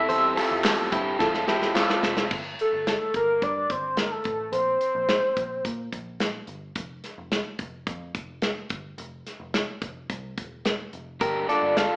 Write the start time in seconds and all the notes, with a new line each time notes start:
Already playing: C4 G4 A4 E5
0.08 E2 E3 G3 C4 G4 A4 C5, hi-hat pedal, open hi-hat
0.36 C4 F4 G4 A4, snare, clap, hi-hat pedal, open hi-hat
0.51 E2
0.64 E2 G3 C4 G4 A4, snare, clap, hi-hat pedal, open hi-hat
0.92 G2 C4 E4 G4 A4, kick, hi-hat pedal, open hi-hat
1.18 F2 F3 A3 C4 E4 F4 A4, kick, snare
1.23 A4
1.34 snare
1.48 E2 E4 G4 A4, snare
1.52 C4
1.62 snare
1.75 A3 C4 E4 F4, snare, clap
1.79 A4
1.90 snare
2.03 F1 C4 E4 A4, snare
2.17 snare
2.31 G1, kick, crash
2.59 A4, closed hi-hat
2.73 G1
2.87 A4, snare, closed hi-hat
3.14 G1 A#4, kick, closed hi-hat
3.42 G2 D5, kick, closed hi-hat
3.70 G1 C5, kick, closed hi-hat
3.97 A#4, snare, closed hi-hat
4.12 A4
4.24 A1, kick, closed hi-hat
4.52 A#1 C5, closed hi-hat
4.81 closed hi-hat
4.95 A#1
5.09 snare, closed hi-hat
5.37 A#1, kick, closed hi-hat
5.65 A#2, kick, closed hi-hat
5.92 A#1, kick, closed hi-hat
6.20 snare, closed hi-hat
6.47 G1, closed hi-hat
6.75 F1, kick, closed hi-hat
7.04 snare, closed hi-hat
7.18 F1
7.32 snare, closed hi-hat
7.59 F1, kick, closed hi-hat
7.87 F2, kick, closed hi-hat
8.15 F1, kick, closed hi-hat
8.42 snare, closed hi-hat
8.69 G1, kick, closed hi-hat
8.98 F1, closed hi-hat
9.27 snare, closed hi-hat
9.40 F1
9.54 snare, closed hi-hat
9.82 F1, kick, closed hi-hat
10.10 C2, kick, closed hi-hat
10.38 E1, kick, closed hi-hat
10.65 snare, closed hi-hat
10.93 F1, closed hi-hat
11.20 G1 G2 D3 G3 A#3 D4 G4 A4 A#4, kick, closed hi-hat
11.48 G3 A#3 D4 F4 A4 D5, snare, closed hi-hat
11.62 G1
11.76 G3 A#3 D4 A4 F5, snare, closed hi-hat